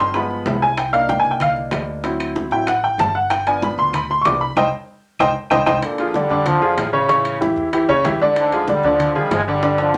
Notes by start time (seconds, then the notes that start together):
Already playing: F3 C4 D4
0.00 G1 C6, high timbale
0.14 F3 G#3 B3 B5, high bongo, high conga, low timbale, claves
0.31 high bongo, high conga
0.46 C2, high bongo, low bongo, high conga, low timbale
0.62 G#5, low timbale
0.77 G5, high bongo, high timbale, claves
0.92 A#3 D4 D#4 F5, high bongo, high conga, high timbale
1.09 G5, high bongo, high conga, low timbale
1.20 G#5
1.24 C2, high bongo, high conga
1.31 G5
1.40 F5, high bongo, high conga, low conga, high timbale, claves
1.56 high bongo, high conga
1.71 D2, high bongo, low bongo, high conga, high timbale, low timbale, claves
2.04 F#3 C4 E4, high bongo, high conga, high timbale
2.20 high bongo, high conga, high timbale, claves
2.36 high bongo, high conga, low timbale
2.51 A1 F#3 C4 E4 G5, high bongo, high conga
2.67 F#5, high bongo, high conga, high timbale, claves
2.83 G5, high bongo, high conga
2.98 G1 A5, high bongo, low bongo, high conga, high timbale, low timbale
3.15 F#5
3.30 G5, high bongo, high conga, high timbale, claves
3.47 F3 B3 D4 G#5, high bongo, high conga, high timbale
3.62 B5, high bongo, high conga, low timbale
3.78 D2 C6, high bongo, high conga
3.93 B5, high bongo, high conga, low conga, high timbale, claves
4.09 C6, high bongo, high conga
4.21 C2 F3 C#6, high bongo, low bongo, high timbale, low timbale, claves
4.26 B3 D4 D6
4.41 B5
4.56 C2 C5 D#5 G5, high bongo, high conga, high timbale, claves
5.19 C2 C5 D#5 G5, high bongo, high conga, high timbale, claves
5.50 C2 C5 D#5 G5, high bongo, high conga, high timbale, claves
5.66 C2 C5 D#5 G5, high bongo, high conga, high timbale, claves
5.82 A#2 D3, high bongo, high conga, high timbale
5.98 F3 F4 G#4, high bongo, high conga, high timbale
6.14 D3 G3 D4 D5, high bongo, high conga, low timbale
6.29 F2 D3 D4 D5, high bongo, high conga
6.46 D3 F3, high bongo, high conga, low conga, high timbale
6.61 F3 F4 G#4, high bongo, high conga
6.77 A1, high bongo, low bongo, high timbale, low timbale
6.93 C#3 E3 C#4 C#5
7.09 C#3 C#4 C#5, high bongo, high conga, high timbale
7.25 high bongo, high conga, high timbale
7.41 E3 E4 G4, high bongo, high conga, low timbale
7.56 E2, high bongo, high conga
7.73 E3 E4 G4, high bongo, high conga, high timbale
7.89 D#2 C#3 C#4 C#5, high bongo, high conga
8.04 D2 E3 E4 G4, high bongo, low bongo, high conga, high timbale, low timbale
8.20 D3 D4 D5, high conga
8.36 G#2 D3, high bongo, high conga, high timbale
8.52 F3 F4 G#4, high bongo, high conga, high timbale
8.68 D3 G3 D4 D5, high bongo, high conga, low timbale
8.83 D2 D3 F3 D4 D5, high bongo
8.99 high bongo, high conga, low conga, high timbale
9.15 D#3 F3 G3 F4 G#4, high bongo, high conga, low conga
9.31 G1 F3 G#3, high bongo, low bongo, high conga, high timbale, low timbale
9.48 D3 G3 D4 D5
9.63 D3 D4 D5, high bongo, high conga, high timbale
9.78 D3 F3, high bongo, high conga, high timbale
9.94 high bongo, high conga